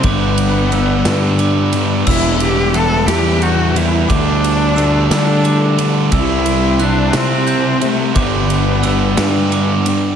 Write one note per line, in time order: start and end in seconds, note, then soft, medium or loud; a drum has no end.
0.00 1.01 G1 loud
0.00 0.71 G2 loud
0.00 4.06 G3 medium
0.00 2.05 D5 medium
0.00 4.05 B5 loud
0.00 kick loud
0.00 ride loud
0.04 0.71 D3 loud
0.04 0.73 G3 loud
0.04 1.73 B3 loud
0.04 0.72 B3 loud
0.04 0.73 D4 loud
0.04 4.06 B4 medium
0.04 0.72 D6 medium
0.38 ride medium
0.72 1.05 G2 medium
0.72 1.05 D3 medium
0.72 1.06 G3 medium
0.72 1.06 B3 medium
0.72 1.06 D4 medium
0.72 1.40 E6 medium
0.72 ride medium
1.05 2.02 G2 loud
1.05 1.72 G2 loud
1.05 1.72 D3 loud
1.05 1.73 G3 loud
1.05 1.73 B3 loud
1.05 1.74 D4 loud
1.05 snare loud
1.05 ride loud
1.39 2.07 D6 medium
1.39 ride medium
1.73 2.05 G2 medium
1.73 2.05 D3 medium
1.73 2.07 G3 loud
1.73 2.05 B3 loud
1.73 2.06 D4 loud
1.73 ride medium
2.06 3.04 E1 loud
2.06 2.73 E3 loud
2.06 2.74 G3 loud
2.06 2.74 B3 loud
2.06 2.38 E4 loud
2.06 2.75 E4 loud
2.06 4.08 E5 medium
2.06 2.74 E6 medium
2.06 kick loud
2.06 crash loud
2.40 2.76 G4 loud
2.40 ride medium
2.74 3.06 E3 medium
2.74 3.08 G3 medium
2.74 3.08 B3 loud
2.74 3.08 E4 medium
2.74 3.08 A4 loud
2.74 3.42 F#6 medium
2.74 ride medium
3.06 4.05 E2 loud
3.06 3.73 E3 loud
3.06 3.75 G3 loud
3.06 3.74 B3 loud
3.06 3.75 E4 loud
3.06 3.44 G4 loud
3.06 snare loud
3.06 ride loud
3.42 3.79 F#4 loud
3.42 4.09 G6 medium
3.42 ride medium
3.74 4.07 E3 medium
3.74 4.08 G3 loud
3.74 4.07 B3 loud
3.74 4.08 E4 loud
3.74 4.13 E4 loud
3.74 ride medium
4.08 5.07 D2 loud
4.08 4.75 D3 loud
4.08 4.77 G3 loud
4.08 4.76 A3 loud
4.08 4.77 D4 loud
4.08 10.15 G4 medium
4.08 6.10 A4 medium
4.08 6.10 D5 medium
4.08 6.10 A5 loud
4.08 4.77 D6 medium
4.08 kick loud
4.08 ride loud
4.12 5.12 D4 loud
4.44 ride medium
4.76 5.09 D3 medium
4.76 5.10 G3 medium
4.76 5.10 A3 medium
4.76 5.11 D4 loud
4.76 5.44 E6 medium
4.76 ride medium
5.10 5.77 D3 loud
5.10 6.08 D3 loud
5.10 5.78 G3 loud
5.10 5.78 A3 loud
5.10 5.78 D4 loud
5.10 5.84 D4 loud
5.10 snare loud
5.10 ride loud
5.44 6.12 D6 medium
5.44 ride medium
5.78 6.10 D3 medium
5.78 6.12 G3 loud
5.78 6.11 A3 loud
5.78 6.11 D4 medium
5.78 ride medium
6.12 7.10 C2 loud
6.12 6.79 C3 loud
6.12 6.80 G3 loud
6.12 6.80 C4 loud
6.12 6.80 E4 loud
6.12 6.84 E4 loud
6.12 8.14 C5 medium
6.12 8.14 E5 medium
6.12 8.14 C6 medium
6.12 6.80 E6 medium
6.12 kick loud
6.12 ride loud
6.46 ride medium
6.79 7.13 C3 medium
6.79 7.14 G3 medium
6.79 7.14 C4 loud
6.79 7.17 D4 loud
6.79 7.14 E4 loud
6.79 7.47 F#6 medium
6.79 ride medium
7.13 8.11 C3 loud
7.13 7.80 C3 loud
7.13 7.81 G3 loud
7.13 7.81 C4 loud
7.13 7.85 C4 loud
7.13 7.81 E4 loud
7.13 snare loud
7.13 ride loud
7.47 8.15 G6 medium
7.47 ride medium
7.81 8.13 C3 loud
7.81 8.15 G3 loud
7.81 8.17 A3 loud
7.81 8.14 C4 loud
7.81 8.14 E4 loud
7.81 ride medium
8.15 9.14 G1 loud
8.15 8.82 G2 loud
8.15 8.83 D3 loud
8.15 8.83 G3 loud
8.15 8.84 B3 loud
8.15 9.83 B3 medium
8.15 8.84 D4 loud
8.15 10.16 B4 medium
8.15 10.16 D5 medium
8.15 10.16 B5 loud
8.15 8.83 D6 medium
8.15 kick loud
8.15 ride loud
8.50 ride medium
8.83 9.16 G2 medium
8.83 9.17 D3 medium
8.83 9.18 G3 medium
8.83 9.18 B3 medium
8.83 9.19 D4 medium
8.83 9.51 E6 medium
8.83 ride medium
9.17 9.85 G2 loud
9.17 10.16 G2 loud
9.17 9.86 D3 loud
9.17 9.86 G3 loud
9.17 9.87 B3 loud
9.17 9.87 D4 loud
9.17 snare loud
9.17 ride loud
9.52 10.16 D6 medium
9.52 ride medium
9.86 10.16 G2 medium
9.86 10.16 D3 medium
9.86 10.16 G3 medium
9.86 10.16 B3 medium
9.86 10.16 D4 loud
9.86 ride medium